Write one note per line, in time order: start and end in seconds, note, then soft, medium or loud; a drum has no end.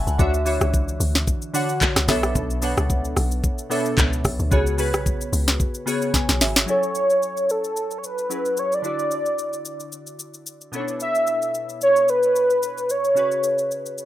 0.00 0.21 F#3 medium
0.00 0.21 C#4 medium
0.00 0.21 G#4 medium
0.00 0.21 A4 medium
0.00 0.21 D5 medium
0.00 0.21 E5 loud
0.00 0.08 F#5 medium
0.00 0.22 G#5 medium
0.00 0.21 A5 medium
0.00 0.21 B5 medium
0.00 0.22 C#6 medium
0.00 0.21 E6 medium
0.07 0.18 C#2 loud
0.07 0.33 F#5 medium
0.07 shaker medium
0.18 0.59 D2 loud
0.18 0.41 D3 medium
0.18 0.41 D4 medium
0.18 0.42 F#4 medium
0.18 0.42 C#5 medium
0.18 0.42 E5 loud
0.18 kick loud
0.18 shaker medium
0.34 shaker medium
0.45 1.33 E3 medium
0.45 1.33 D4 medium
0.45 1.33 F#4 medium
0.45 1.34 C#5 medium
0.45 1.34 E5 medium
0.45 open hi-hat medium
0.45 shaker medium
0.61 0.98 C#2 medium
0.61 cross-stick loud
0.61 shaker medium
0.74 kick loud
0.74 shaker medium
0.88 shaker medium
1.00 1.26 D2 loud
1.00 open hi-hat medium
1.00 shaker medium
1.15 snare medium
1.15 shaker medium
1.27 kick loud
1.27 shaker medium
1.42 shaker medium
1.54 2.08 D3 medium
1.54 2.07 D4 medium
1.54 2.09 F#4 medium
1.54 2.08 C#5 medium
1.54 2.09 F#5 loud
1.54 open hi-hat medium
1.54 shaker medium
1.69 shaker medium
1.81 kick loud
1.81 clap loud
1.81 shaker medium
1.96 2.08 C#2 medium
1.96 cross-stick loud
1.96 snare medium
1.96 shaker soft
2.08 2.34 B1 loud
2.08 2.52 B2 medium
2.08 2.53 B3 medium
2.08 2.53 D4 medium
2.08 2.53 A4 medium
2.08 2.53 C#5 medium
2.08 2.54 E5 loud
2.08 kick medium
2.08 cross-stick medium
2.08 snare medium
2.08 open hi-hat medium
2.08 shaker medium
2.23 cross-stick loud
2.23 shaker medium
2.35 2.75 B1 loud
2.35 kick loud
2.35 shaker medium
2.50 shaker medium
2.62 3.49 B2 medium
2.62 3.49 B3 medium
2.62 3.50 D4 medium
2.62 3.50 A4 medium
2.62 3.50 C#5 medium
2.62 3.50 F#5 medium
2.62 open hi-hat soft
2.62 shaker medium
2.77 3.14 C#2 medium
2.77 cross-stick loud
2.77 shaker medium
2.90 kick loud
2.90 shaker medium
3.05 shaker medium
3.17 3.42 B1 loud
3.17 cross-stick medium
3.17 open hi-hat medium
3.17 shaker medium
3.31 shaker medium
3.44 kick loud
3.44 shaker medium
3.58 shaker medium
3.70 4.36 B2 medium
3.70 4.36 B3 medium
3.70 4.37 D4 medium
3.70 4.37 A4 medium
3.70 4.37 C#5 medium
3.70 4.37 E5 loud
3.70 open hi-hat medium
3.70 shaker medium
3.86 shaker medium
3.98 4.23 C#2 loud
3.98 kick loud
3.98 clap loud
3.98 shaker medium
4.13 shaker medium
4.25 4.39 B1 loud
4.25 kick medium
4.25 cross-stick medium
4.25 open hi-hat medium
4.25 shaker medium
4.39 4.51 D2 loud
4.39 shaker medium
4.51 4.95 C#2 loud
4.51 4.73 C#3 medium
4.51 4.74 B3 medium
4.51 4.74 F#4 medium
4.51 4.74 G#4 medium
4.51 4.75 C#5 loud
4.51 kick loud
4.51 shaker medium
4.67 shaker medium
4.78 5.65 C#3 medium
4.78 5.66 B3 medium
4.78 5.66 F#4 medium
4.78 5.66 G#4 medium
4.78 5.66 B4 medium
4.78 open hi-hat soft
4.78 shaker medium
4.94 5.31 B1 medium
4.94 cross-stick loud
4.94 shaker medium
5.06 kick loud
5.06 shaker medium
5.21 shaker medium
5.33 5.58 C#2 loud
5.33 open hi-hat medium
5.33 shaker medium
5.48 snare medium
5.48 shaker medium
5.60 kick loud
5.60 shaker medium
5.75 shaker medium
5.86 6.52 C#3 medium
5.86 6.53 B3 medium
5.86 6.53 F#4 medium
5.86 6.53 G#4 medium
5.86 6.53 C#5 loud
5.86 open hi-hat medium
5.86 shaker medium
6.02 shaker medium
6.14 6.39 G#5 medium
6.14 kick loud
6.14 snare medium
6.14 shaker medium
6.29 6.42 B1 medium
6.29 snare medium
6.29 shaker medium
6.41 6.66 G#1 medium
6.41 6.66 E5 medium
6.41 snare medium
6.41 open hi-hat medium
6.41 shaker medium
6.56 snare loud
6.56 shaker medium
6.66 8.26 F#3 medium
6.66 8.26 C#4 medium
6.66 8.27 E4 medium
6.66 7.52 C#5 loud
6.66 8.28 G#5 medium
6.66 shaker medium
6.70 8.28 A4 medium
6.83 shaker soft
6.95 shaker medium
7.10 shaker medium
7.23 shaker medium
7.37 shaker medium
7.49 8.00 A4 medium
7.49 shaker medium
7.64 shaker medium
7.76 shaker medium
7.91 shaker medium
7.98 8.07 C#5 medium
8.04 8.61 B4 loud
8.04 shaker medium
8.18 shaker soft
8.29 8.84 F#3 medium
8.29 8.84 C#4 soft
8.29 8.83 E4 soft
8.29 8.85 G#4 soft
8.29 8.85 B4 medium
8.29 shaker medium
8.45 shaker soft
8.57 8.76 C#5 loud
8.57 shaker medium
8.72 9.81 D5 loud
8.72 shaker medium
8.82 10.69 D3 medium
8.82 10.69 D4 medium
8.82 10.70 E4 medium
8.82 10.70 F#4 medium
8.82 shaker medium
8.87 10.71 D5 medium
8.99 shaker soft
9.11 shaker medium
9.26 shaker medium
9.38 shaker medium
9.53 shaker medium
9.65 shaker medium
9.80 shaker medium
9.92 shaker medium
10.07 shaker medium
10.19 shaker medium
10.34 shaker medium
10.46 shaker medium
10.61 shaker soft
10.72 12.85 B2 medium
10.72 12.85 B3 medium
10.72 10.81 C#4 medium
10.72 12.86 E4 medium
10.72 12.86 A4 medium
10.72 shaker medium
10.76 12.89 D4 medium
10.76 12.87 C#5 medium
10.88 shaker medium
11.00 11.51 E5 loud
11.00 shaker medium
11.15 shaker soft
11.27 shaker medium
11.42 shaker medium
11.54 shaker medium
11.69 shaker medium
11.81 12.11 C#5 loud
11.81 shaker medium
11.96 shaker medium
12.08 12.92 B4 loud
12.08 shaker medium
12.23 shaker medium
12.36 shaker medium
12.50 shaker medium
12.63 shaker medium
12.78 shaker soft
12.89 13.71 C#5 loud
12.89 shaker medium
13.05 shaker medium
13.15 14.05 C#3 medium
13.15 14.05 C#4 medium
13.15 14.05 F#4 medium
13.15 14.05 G#4 medium
13.15 shaker medium
13.19 14.05 B4 medium
13.31 shaker soft
13.43 shaker medium
13.58 shaker medium
13.71 shaker medium
13.86 shaker medium
13.98 shaker medium